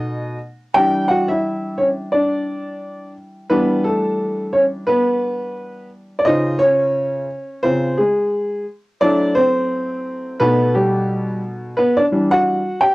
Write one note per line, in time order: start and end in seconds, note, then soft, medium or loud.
0.00 0.36 B2 medium
0.00 0.36 A3 soft
0.00 0.36 D#4 medium
0.00 0.36 D#5 medium
0.74 3.47 E3 medium
0.74 3.47 G3 medium
0.74 2.12 D4 medium
0.74 1.07 G4 medium
0.74 1.10 G5 loud
1.08 1.28 F#4 medium
1.08 1.29 F#5 medium
1.28 1.75 E4 medium
1.28 1.79 E5 medium
1.77 1.87 C#4 medium
1.77 1.85 C#5 medium
2.12 3.12 D4 medium
2.12 3.12 D5 medium
3.49 6.22 E3 medium
3.49 6.22 G3 medium
3.49 3.83 B3 medium
3.49 6.23 D4 medium
3.49 3.85 B4 medium
3.84 4.51 A3 medium
3.84 4.49 A4 medium
4.53 4.63 C#4 medium
4.53 4.61 C#5 loud
4.87 5.88 B3 medium
4.87 5.87 B4 medium
6.19 6.26 D5 medium
6.25 7.26 C#3 medium
6.25 6.59 D#4 medium
6.25 7.26 F4 medium
6.25 7.26 C5 medium
6.25 6.61 D#5 loud
6.59 7.61 C#4 medium
6.59 7.59 C#5 loud
7.63 7.95 C#3 soft
7.63 7.97 C4 medium
7.63 7.95 F4 medium
7.63 7.99 C5 loud
7.97 8.64 G#3 medium
7.97 8.63 G#4 medium
9.01 10.36 F#3 medium
9.01 10.36 A3 medium
9.01 9.35 D4 medium
9.01 10.36 E4 medium
9.01 9.37 D5 loud
9.35 10.36 C4 medium
9.35 10.42 C5 loud
10.40 11.74 B2 medium
10.40 11.74 A3 medium
10.40 10.73 B3 medium
10.40 11.75 D#4 medium
10.40 10.72 B4 loud
10.75 11.40 G3 medium
10.75 11.39 G4 medium
11.77 11.97 B3 medium
11.77 11.98 B4 medium
11.97 12.05 D4 medium
11.97 12.05 D5 medium
12.12 12.60 E3 medium
12.12 12.60 G3 medium
12.12 12.60 D4 medium
12.31 12.78 F#4 medium
12.31 12.82 F#5 loud
12.81 12.95 G4 medium
12.81 12.95 G5 loud